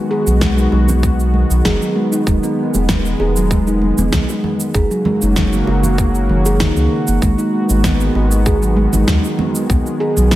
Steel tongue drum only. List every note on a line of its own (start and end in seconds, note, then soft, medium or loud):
0.11 0.26 G#4 medium
0.27 0.40 F#3 medium
0.41 0.57 G#3 medium
0.58 0.72 D#4 medium
0.89 1.49 B3 medium
1.65 1.80 G#4 medium
1.82 1.95 F#3 medium
1.96 2.12 G#3 medium
2.12 2.26 D#4 medium
2.43 3.04 B3 medium
3.20 3.35 G#4 medium
3.36 3.49 F#3 medium
3.51 3.67 G#3 medium
3.67 3.81 D#4 medium
3.99 4.59 B3 medium
4.74 4.89 G#4 medium
4.91 5.04 F#3 medium
5.06 5.21 G#3 medium
5.23 5.36 D#4 medium
5.53 6.13 A#3 medium
6.29 6.44 D#3 medium
6.46 6.60 G#4 medium
6.60 6.75 D#4 medium
6.77 6.85 A#3 medium
7.08 7.21 A#3 medium
7.22 7.38 G#3 medium
7.38 7.52 D#4 medium
7.84 8.44 B3 medium
8.46 8.61 G#4 medium
8.62 8.75 F#3 medium
8.77 8.92 G#3 medium
8.93 9.07 D#4 medium
9.39 9.69 B3 medium
10.00 10.15 G#4 medium
10.17 10.30 F#3 medium
10.31 10.36 G#3 loud